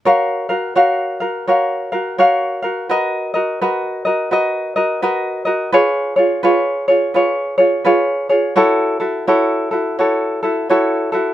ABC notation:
X:1
M:4/4
L:1/8
Q:"Swing" 1/4=85
K:F#
V:1 name="Ukulele"
[FAce] [FAe] [FAce] [FAe] [FAce] [FAe] [FAce] [FAe] | [FABd] [FAd] [FABd] [FAd] [FABd] [FAd] [FABd] [FAd] | [EGBc] [EGc] [EGBc] [EGc] [EGBc] [EGc] [EGBc] [EGc] | [=EF=Ac] [EFA] [EFAc] [EFA] [EFAc] [EFA] [EFAc] [EFA] |]